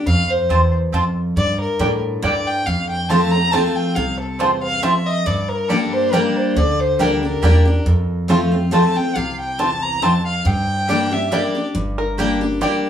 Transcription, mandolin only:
0.49 C4 F4 C5 A5
0.92 C4 F4 C5 A5
1.79 A#3 G4 D5 G5
2.22 A#3 G4 D5 G5
3.09 C4 F4 C5 A5
3.52 C4 F4 C5 A5
4.39 C4 F4 C5 A5
4.82 C4 F4 C5 A5
5.69 A#3 G4 D5 G5
6.12 A#3 G4 D5 G5
6.99 A#3 G4 D5 G5
7.42 A#3 G4 D5 G5
8.29 C4 F4 C5 A5
8.72 C4 F4 C5 A5
9.58 C4 F4 C5 A5
10.02 C4 F4 C5 A5
10.88 A#3 G4 D5 G5
11.31 A#3 G4 D5 G5
12.18 A#3 G4 D5 G5
12.61 A#3 G4 D5 G5

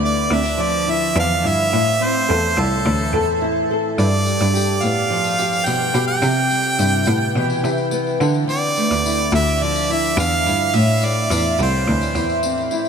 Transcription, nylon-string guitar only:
Already playing: D3 A3
0.01 E4
0.29 C4
0.43 D4
0.58 F3
0.87 E4
1.15 D4
1.43 E4
1.72 A2
2.00 C4
2.29 A4
2.57 E4
2.85 E3
3.13 A4
3.42 E4
3.71 A4
3.98 G2
4.26 G3
4.54 G4
4.82 B3
5.10 F3
5.39 G4
5.67 B3
5.95 G4
6.23 C3
6.51 G3
6.79 E4
7.07 B3
7.35 E3
7.63 E4
7.91 B3
8.20 D3
8.48 D3
8.77 A3
9.05 E4
9.33 D4
9.61 F3
9.90 E4
10.17 D4
10.46 E4
10.74 A2
11.03 A3
11.30 E4
11.60 C4
11.87 E3
12.15 E4
12.43 C4
12.71 E4

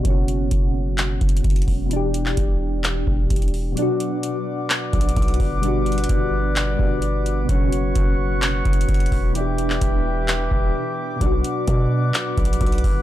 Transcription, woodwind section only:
3.77 B4 D5 F#5 D6
5.63 D5
7.49 C#5 F#5 C#6
9.35 B4 E5 G5 D6
11.21 B4 D5 F#5

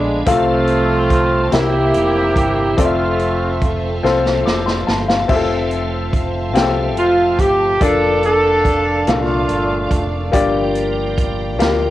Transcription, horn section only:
Already playing: G#3 D4
0.28 A3 C4 F4
1.53 A#3 E4 G4
2.79 A3 C4 F4
6.98 F4
7.40 G4
7.83 D4 A4
8.25 D4 A4
9.09 A3 D4 F4

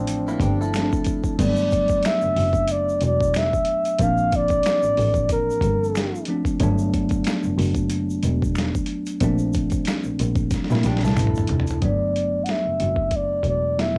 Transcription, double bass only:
Already playing: A1
0.40 G1
1.39 G1
2.23 F#1
2.37 F#1
3.02 E1
4.00 A#1
4.83 A1
4.98 A1
5.62 G1
6.61 G1
7.44 F#1
7.58 F#1
8.24 E1
9.21 A#1
10.05 A#1
10.20 A#1
10.71 A#2
10.85 A#1
11.03 C2
11.18 A1
11.50 F1
11.82 G1
12.66 F#1
12.80 F#1
13.44 E1

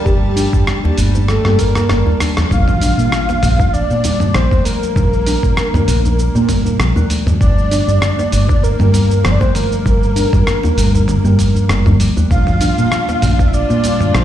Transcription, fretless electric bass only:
0.06 G1
0.53 G2
0.98 G1
1.45 G2
1.89 G1
2.51 A#1
2.98 A#2
3.43 A#1
3.90 A#2
4.35 A#1
4.96 A#1
5.43 A#2
5.88 A#1
6.35 A#2
6.79 A#1
7.41 G1
7.87 G2
8.33 G1
8.80 G2
9.24 G1
9.86 G1
10.33 G2
10.77 G1
11.24 G2
11.69 G1
12.31 A#1
12.78 A#2
13.23 A#1
13.70 A#2
14.14 A#1

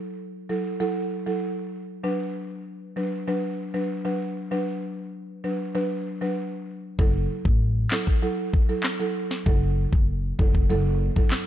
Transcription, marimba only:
Already playing: F#3 E4 A4
0.49 F#3 E4 A4
0.80 F#3 E4 A4
1.26 F#3 E4 A4
2.04 F#3 D4 B4
2.96 F#3 D4 B4
3.27 F#3 D4 B4
3.74 F#3 D4 B4
4.05 F#3 D4 B4
4.51 F#3 D4 B4
5.44 F#3 D4 B4
5.75 F#3 D4 B4
6.21 F#3 D4 B4
6.99 F#3 E4 A4
7.91 F#3 E4 A4
8.22 F#3 E4 A4
8.69 F#3 E4 A4
9.00 F#3 E4 A4
9.46 F#3 E4 A4
10.39 F#3 E4 A4
10.70 F#3 E4 A4
11.16 F#3 E4 A4

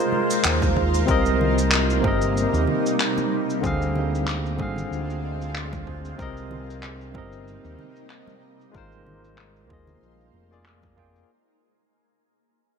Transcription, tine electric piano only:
Already playing: G#3 F4 A#4 C5
1.05 C3 C4 A#4
1.11 D#5
2.01 C3 C4 A#4
2.07 D#5
3.61 D3 C4 G#4
3.67 F5
4.57 D3 C4 G#4
4.62 F5
6.17 C3 C4 A#4
6.22 D#5
7.12 C3 C4 A#4
7.18 D#5
8.72 G#3 F4 A#4
8.78 C5
9.67 A#3 F4 G#4
9.73 D#5
10.51 A#3 F4 G#4 D5
10.96 A#3 F4 G#4 G5

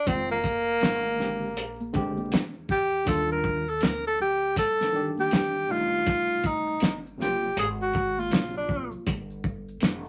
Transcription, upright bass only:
0.07 F1
0.82 G#1
1.57 A#1
2.32 E2
3.07 D#2
3.82 D2
4.57 G2
5.32 F2
6.07 A1
6.82 G1
7.57 G#1
8.32 A#1
8.93 muted upright bass stroke
9.07 G1
9.82 F1

